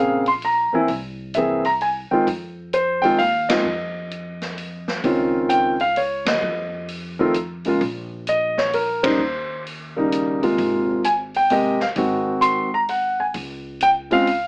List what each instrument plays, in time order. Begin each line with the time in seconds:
Already playing: upright bass A#1, grand piano C#3 A#3 C4 G#4 F5
0.26 grand piano C6, open hi-hat
0.42 grand piano A#5, open hi-hat
0.73 grand piano E3 A#3 C4 E4 G#5, muted upright bass stroke
0.88 upright bass C2, kick, open hi-hat
1.34 grand piano E3 A#3 C4 E5, closed hi-hat
1.38 grand piano G#4
1.65 grand piano A#5, open hi-hat
1.81 grand piano G#5, open hi-hat
2.11 grand piano D#3 G#3 C4 F4 G5, muted upright bass stroke
2.27 upright bass F2, kick, open hi-hat
2.73 grand piano C5, closed hi-hat
3.02 grand piano D#3 G#3 C4 F4 G5, open hi-hat
3.19 upright bass D#2, grand piano F5, open hi-hat
3.49 grand piano D#3 G#3 C4 F4 D#5, snare, ride
3.65 upright bass F2
4.11 closed hi-hat
4.42 snare, open hi-hat
4.58 open hi-hat
4.88 snare
5.04 upright bass C#2, grand piano D#3 C4 C#4 F4, kick, open hi-hat
5.49 grand piano G5, closed hi-hat
5.80 grand piano F5, open hi-hat
5.96 grand piano C#5, open hi-hat
6.25 upright bass D#2, grand piano D#5, snare, ride
6.42 upright bass F2
6.88 open hi-hat
7.19 grand piano D#3 A3 C4 F4
7.34 closed hi-hat
7.64 grand piano C#3 G#3 A#3 F4, open hi-hat
7.81 upright bass A#1, kick, open hi-hat
8.27 grand piano D#5, closed hi-hat
8.58 grand piano C#5, snare
8.73 grand piano A#4, open hi-hat
9.03 grand piano C#3 G3 A#3 D#4 C5, kick, ride
9.19 upright bass D#2
9.67 open hi-hat
9.96 grand piano C#3 G3 A#3 D#4
10.12 closed hi-hat
10.42 grand piano C3 G#3 A#3 F4, open hi-hat
10.58 upright bass G#1, kick, open hi-hat
11.04 grand piano G#5, closed hi-hat
11.34 grand piano G5, open hi-hat
11.50 grand piano C3 G#3 A#3 G4 D#5, open hi-hat
11.80 grand piano F5, muted upright bass stroke, snare
11.96 upright bass G#1, grand piano D#3 G#3 C4 F#4, kick, open hi-hat
12.41 grand piano C6, closed hi-hat
12.74 grand piano A#5
12.88 grand piano F#5, open hi-hat
13.20 grand piano G#5
13.34 upright bass C#2, kick, open hi-hat
13.81 grand piano G5, closed hi-hat
14.11 grand piano C#3 G#3 C4 F4 F5, open hi-hat
14.27 open hi-hat